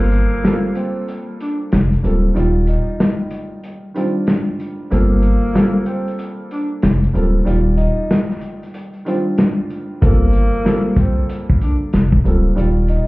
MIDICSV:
0, 0, Header, 1, 5, 480
1, 0, Start_track
1, 0, Key_signature, -2, "minor"
1, 0, Tempo, 638298
1, 1776, Time_signature, 4, 2, 24, 8
1, 9832, End_track
2, 0, Start_track
2, 0, Title_t, "Tenor saxophone"
2, 0, Program_c, 0, 66
2, 0, Note_on_c, 0, 58, 119
2, 544, Note_off_c, 0, 58, 0
2, 574, Note_on_c, 0, 60, 81
2, 791, Note_off_c, 0, 60, 0
2, 1064, Note_on_c, 0, 62, 73
2, 1192, Note_off_c, 0, 62, 0
2, 2014, Note_on_c, 0, 63, 76
2, 2379, Note_off_c, 0, 63, 0
2, 2986, Note_on_c, 0, 60, 77
2, 3113, Note_off_c, 0, 60, 0
2, 3698, Note_on_c, 0, 58, 109
2, 4387, Note_off_c, 0, 58, 0
2, 4406, Note_on_c, 0, 60, 87
2, 4627, Note_off_c, 0, 60, 0
2, 4902, Note_on_c, 0, 62, 75
2, 5031, Note_off_c, 0, 62, 0
2, 5844, Note_on_c, 0, 63, 85
2, 6213, Note_off_c, 0, 63, 0
2, 6821, Note_on_c, 0, 60, 75
2, 6951, Note_off_c, 0, 60, 0
2, 7533, Note_on_c, 0, 58, 120
2, 8224, Note_off_c, 0, 58, 0
2, 8256, Note_on_c, 0, 60, 79
2, 8472, Note_off_c, 0, 60, 0
2, 8745, Note_on_c, 0, 62, 72
2, 8873, Note_off_c, 0, 62, 0
2, 9693, Note_on_c, 0, 63, 78
2, 9832, Note_off_c, 0, 63, 0
2, 9832, End_track
3, 0, Start_track
3, 0, Title_t, "Upright piano"
3, 0, Program_c, 1, 0
3, 0, Note_on_c, 1, 55, 82
3, 0, Note_on_c, 1, 58, 87
3, 0, Note_on_c, 1, 60, 92
3, 0, Note_on_c, 1, 65, 81
3, 0, Note_on_c, 1, 69, 94
3, 303, Note_off_c, 1, 55, 0
3, 305, Note_off_c, 1, 58, 0
3, 308, Note_off_c, 1, 60, 0
3, 311, Note_off_c, 1, 65, 0
3, 314, Note_off_c, 1, 69, 0
3, 327, Note_on_c, 1, 55, 93
3, 332, Note_on_c, 1, 58, 79
3, 338, Note_on_c, 1, 60, 79
3, 343, Note_on_c, 1, 65, 89
3, 348, Note_on_c, 1, 69, 97
3, 1457, Note_off_c, 1, 55, 0
3, 1459, Note_off_c, 1, 58, 0
3, 1462, Note_off_c, 1, 60, 0
3, 1465, Note_off_c, 1, 65, 0
3, 1467, Note_off_c, 1, 69, 0
3, 1526, Note_on_c, 1, 55, 72
3, 1531, Note_on_c, 1, 58, 65
3, 1537, Note_on_c, 1, 60, 70
3, 1542, Note_on_c, 1, 65, 74
3, 1547, Note_on_c, 1, 69, 74
3, 1754, Note_off_c, 1, 55, 0
3, 1758, Note_on_c, 1, 51, 87
3, 1759, Note_off_c, 1, 58, 0
3, 1761, Note_off_c, 1, 60, 0
3, 1764, Note_off_c, 1, 65, 0
3, 1765, Note_on_c, 1, 55, 88
3, 1767, Note_off_c, 1, 69, 0
3, 1773, Note_on_c, 1, 74, 80
3, 1780, Note_on_c, 1, 65, 105
3, 2892, Note_off_c, 1, 51, 0
3, 2896, Note_off_c, 1, 55, 0
3, 2900, Note_off_c, 1, 74, 0
3, 2903, Note_off_c, 1, 65, 0
3, 2965, Note_on_c, 1, 51, 90
3, 2973, Note_on_c, 1, 55, 85
3, 2981, Note_on_c, 1, 62, 83
3, 2988, Note_on_c, 1, 65, 100
3, 3646, Note_off_c, 1, 51, 0
3, 3650, Note_off_c, 1, 55, 0
3, 3653, Note_off_c, 1, 62, 0
3, 3657, Note_off_c, 1, 65, 0
3, 3688, Note_on_c, 1, 55, 84
3, 3693, Note_on_c, 1, 58, 89
3, 3699, Note_on_c, 1, 60, 92
3, 3704, Note_on_c, 1, 65, 85
3, 3709, Note_on_c, 1, 69, 95
3, 4142, Note_off_c, 1, 55, 0
3, 4145, Note_off_c, 1, 58, 0
3, 4147, Note_off_c, 1, 60, 0
3, 4150, Note_off_c, 1, 65, 0
3, 4153, Note_off_c, 1, 69, 0
3, 4167, Note_on_c, 1, 55, 97
3, 4172, Note_on_c, 1, 58, 82
3, 4177, Note_on_c, 1, 60, 76
3, 4183, Note_on_c, 1, 65, 91
3, 4189, Note_on_c, 1, 69, 98
3, 5297, Note_off_c, 1, 55, 0
3, 5299, Note_off_c, 1, 58, 0
3, 5302, Note_off_c, 1, 60, 0
3, 5305, Note_off_c, 1, 65, 0
3, 5308, Note_off_c, 1, 69, 0
3, 5365, Note_on_c, 1, 55, 73
3, 5370, Note_on_c, 1, 58, 69
3, 5377, Note_on_c, 1, 60, 73
3, 5382, Note_on_c, 1, 65, 74
3, 5387, Note_on_c, 1, 69, 77
3, 5593, Note_off_c, 1, 55, 0
3, 5596, Note_on_c, 1, 51, 85
3, 5598, Note_off_c, 1, 58, 0
3, 5601, Note_off_c, 1, 60, 0
3, 5604, Note_off_c, 1, 65, 0
3, 5605, Note_on_c, 1, 55, 89
3, 5606, Note_off_c, 1, 69, 0
3, 5611, Note_on_c, 1, 74, 78
3, 5619, Note_on_c, 1, 65, 106
3, 6731, Note_off_c, 1, 51, 0
3, 6736, Note_off_c, 1, 55, 0
3, 6739, Note_off_c, 1, 74, 0
3, 6743, Note_off_c, 1, 65, 0
3, 6805, Note_on_c, 1, 51, 88
3, 6813, Note_on_c, 1, 55, 81
3, 6821, Note_on_c, 1, 62, 82
3, 6827, Note_on_c, 1, 65, 106
3, 7486, Note_off_c, 1, 51, 0
3, 7490, Note_off_c, 1, 55, 0
3, 7493, Note_off_c, 1, 62, 0
3, 7497, Note_off_c, 1, 65, 0
3, 7528, Note_on_c, 1, 55, 81
3, 7534, Note_on_c, 1, 58, 86
3, 7539, Note_on_c, 1, 60, 87
3, 7545, Note_on_c, 1, 65, 85
3, 7550, Note_on_c, 1, 69, 96
3, 7982, Note_off_c, 1, 55, 0
3, 7985, Note_off_c, 1, 58, 0
3, 7988, Note_off_c, 1, 60, 0
3, 7991, Note_off_c, 1, 65, 0
3, 7993, Note_off_c, 1, 69, 0
3, 8004, Note_on_c, 1, 55, 96
3, 8010, Note_on_c, 1, 58, 82
3, 8015, Note_on_c, 1, 60, 77
3, 8021, Note_on_c, 1, 65, 91
3, 8026, Note_on_c, 1, 69, 99
3, 9135, Note_off_c, 1, 55, 0
3, 9138, Note_off_c, 1, 58, 0
3, 9141, Note_off_c, 1, 60, 0
3, 9144, Note_off_c, 1, 65, 0
3, 9146, Note_off_c, 1, 69, 0
3, 9204, Note_on_c, 1, 55, 74
3, 9210, Note_on_c, 1, 58, 67
3, 9216, Note_on_c, 1, 60, 69
3, 9221, Note_on_c, 1, 65, 73
3, 9227, Note_on_c, 1, 69, 73
3, 9432, Note_off_c, 1, 55, 0
3, 9436, Note_on_c, 1, 51, 84
3, 9438, Note_off_c, 1, 58, 0
3, 9441, Note_off_c, 1, 60, 0
3, 9443, Note_off_c, 1, 65, 0
3, 9444, Note_on_c, 1, 55, 87
3, 9447, Note_off_c, 1, 69, 0
3, 9450, Note_on_c, 1, 74, 82
3, 9458, Note_on_c, 1, 65, 106
3, 9832, Note_off_c, 1, 51, 0
3, 9832, Note_off_c, 1, 55, 0
3, 9832, Note_off_c, 1, 65, 0
3, 9832, Note_off_c, 1, 74, 0
3, 9832, End_track
4, 0, Start_track
4, 0, Title_t, "Sub bass"
4, 0, Program_c, 2, 38
4, 0, Note_on_c, 2, 31, 112
4, 159, Note_off_c, 2, 31, 0
4, 1300, Note_on_c, 2, 29, 88
4, 1486, Note_off_c, 2, 29, 0
4, 1541, Note_on_c, 2, 26, 98
4, 1726, Note_off_c, 2, 26, 0
4, 1780, Note_on_c, 2, 27, 109
4, 2080, Note_off_c, 2, 27, 0
4, 3700, Note_on_c, 2, 31, 114
4, 4000, Note_off_c, 2, 31, 0
4, 5140, Note_on_c, 2, 29, 91
4, 5326, Note_off_c, 2, 29, 0
4, 5379, Note_on_c, 2, 26, 98
4, 5565, Note_off_c, 2, 26, 0
4, 5621, Note_on_c, 2, 27, 103
4, 5920, Note_off_c, 2, 27, 0
4, 7538, Note_on_c, 2, 31, 118
4, 7839, Note_off_c, 2, 31, 0
4, 8977, Note_on_c, 2, 29, 88
4, 9164, Note_off_c, 2, 29, 0
4, 9218, Note_on_c, 2, 26, 95
4, 9405, Note_off_c, 2, 26, 0
4, 9459, Note_on_c, 2, 27, 109
4, 9759, Note_off_c, 2, 27, 0
4, 9832, End_track
5, 0, Start_track
5, 0, Title_t, "Drums"
5, 87, Note_on_c, 9, 42, 66
5, 162, Note_off_c, 9, 42, 0
5, 336, Note_on_c, 9, 38, 104
5, 338, Note_on_c, 9, 42, 81
5, 411, Note_off_c, 9, 38, 0
5, 413, Note_off_c, 9, 42, 0
5, 566, Note_on_c, 9, 42, 75
5, 641, Note_off_c, 9, 42, 0
5, 814, Note_on_c, 9, 42, 82
5, 889, Note_off_c, 9, 42, 0
5, 1056, Note_on_c, 9, 42, 77
5, 1131, Note_off_c, 9, 42, 0
5, 1292, Note_on_c, 9, 42, 90
5, 1298, Note_on_c, 9, 38, 108
5, 1368, Note_off_c, 9, 42, 0
5, 1373, Note_off_c, 9, 38, 0
5, 1448, Note_on_c, 9, 42, 56
5, 1523, Note_off_c, 9, 42, 0
5, 1537, Note_on_c, 9, 42, 67
5, 1612, Note_off_c, 9, 42, 0
5, 1776, Note_on_c, 9, 42, 82
5, 1851, Note_off_c, 9, 42, 0
5, 2008, Note_on_c, 9, 42, 64
5, 2083, Note_off_c, 9, 42, 0
5, 2257, Note_on_c, 9, 38, 109
5, 2259, Note_on_c, 9, 42, 80
5, 2332, Note_off_c, 9, 38, 0
5, 2334, Note_off_c, 9, 42, 0
5, 2486, Note_on_c, 9, 42, 74
5, 2561, Note_off_c, 9, 42, 0
5, 2734, Note_on_c, 9, 42, 79
5, 2809, Note_off_c, 9, 42, 0
5, 2976, Note_on_c, 9, 42, 75
5, 3051, Note_off_c, 9, 42, 0
5, 3211, Note_on_c, 9, 42, 88
5, 3217, Note_on_c, 9, 38, 106
5, 3286, Note_off_c, 9, 42, 0
5, 3292, Note_off_c, 9, 38, 0
5, 3456, Note_on_c, 9, 42, 69
5, 3532, Note_off_c, 9, 42, 0
5, 3696, Note_on_c, 9, 42, 82
5, 3771, Note_off_c, 9, 42, 0
5, 3927, Note_on_c, 9, 42, 66
5, 4002, Note_off_c, 9, 42, 0
5, 4177, Note_on_c, 9, 38, 108
5, 4179, Note_on_c, 9, 42, 81
5, 4253, Note_off_c, 9, 38, 0
5, 4254, Note_off_c, 9, 42, 0
5, 4406, Note_on_c, 9, 42, 78
5, 4481, Note_off_c, 9, 42, 0
5, 4569, Note_on_c, 9, 42, 54
5, 4644, Note_off_c, 9, 42, 0
5, 4653, Note_on_c, 9, 42, 83
5, 4728, Note_off_c, 9, 42, 0
5, 4895, Note_on_c, 9, 42, 80
5, 4970, Note_off_c, 9, 42, 0
5, 5131, Note_on_c, 9, 42, 95
5, 5137, Note_on_c, 9, 38, 110
5, 5207, Note_off_c, 9, 42, 0
5, 5212, Note_off_c, 9, 38, 0
5, 5286, Note_on_c, 9, 42, 56
5, 5362, Note_off_c, 9, 42, 0
5, 5376, Note_on_c, 9, 42, 67
5, 5452, Note_off_c, 9, 42, 0
5, 5615, Note_on_c, 9, 42, 80
5, 5690, Note_off_c, 9, 42, 0
5, 5847, Note_on_c, 9, 42, 64
5, 5923, Note_off_c, 9, 42, 0
5, 6097, Note_on_c, 9, 38, 107
5, 6098, Note_on_c, 9, 42, 83
5, 6172, Note_off_c, 9, 38, 0
5, 6173, Note_off_c, 9, 42, 0
5, 6243, Note_on_c, 9, 38, 34
5, 6318, Note_off_c, 9, 38, 0
5, 6326, Note_on_c, 9, 42, 74
5, 6401, Note_off_c, 9, 42, 0
5, 6489, Note_on_c, 9, 42, 57
5, 6565, Note_off_c, 9, 42, 0
5, 6573, Note_on_c, 9, 42, 83
5, 6648, Note_off_c, 9, 42, 0
5, 6718, Note_on_c, 9, 42, 43
5, 6793, Note_off_c, 9, 42, 0
5, 6815, Note_on_c, 9, 42, 79
5, 6891, Note_off_c, 9, 42, 0
5, 7052, Note_on_c, 9, 42, 90
5, 7058, Note_on_c, 9, 38, 109
5, 7127, Note_off_c, 9, 42, 0
5, 7133, Note_off_c, 9, 38, 0
5, 7297, Note_on_c, 9, 42, 69
5, 7372, Note_off_c, 9, 42, 0
5, 7535, Note_on_c, 9, 42, 81
5, 7536, Note_on_c, 9, 36, 114
5, 7610, Note_off_c, 9, 42, 0
5, 7612, Note_off_c, 9, 36, 0
5, 7767, Note_on_c, 9, 42, 65
5, 7843, Note_off_c, 9, 42, 0
5, 8017, Note_on_c, 9, 38, 102
5, 8019, Note_on_c, 9, 42, 81
5, 8092, Note_off_c, 9, 38, 0
5, 8094, Note_off_c, 9, 42, 0
5, 8245, Note_on_c, 9, 36, 90
5, 8246, Note_on_c, 9, 42, 76
5, 8320, Note_off_c, 9, 36, 0
5, 8321, Note_off_c, 9, 42, 0
5, 8493, Note_on_c, 9, 42, 82
5, 8569, Note_off_c, 9, 42, 0
5, 8645, Note_on_c, 9, 36, 86
5, 8720, Note_off_c, 9, 36, 0
5, 8734, Note_on_c, 9, 42, 77
5, 8809, Note_off_c, 9, 42, 0
5, 8970, Note_on_c, 9, 42, 92
5, 8975, Note_on_c, 9, 38, 105
5, 9045, Note_off_c, 9, 42, 0
5, 9051, Note_off_c, 9, 38, 0
5, 9117, Note_on_c, 9, 36, 83
5, 9192, Note_off_c, 9, 36, 0
5, 9215, Note_on_c, 9, 42, 69
5, 9290, Note_off_c, 9, 42, 0
5, 9455, Note_on_c, 9, 42, 79
5, 9531, Note_off_c, 9, 42, 0
5, 9687, Note_on_c, 9, 42, 66
5, 9762, Note_off_c, 9, 42, 0
5, 9832, End_track
0, 0, End_of_file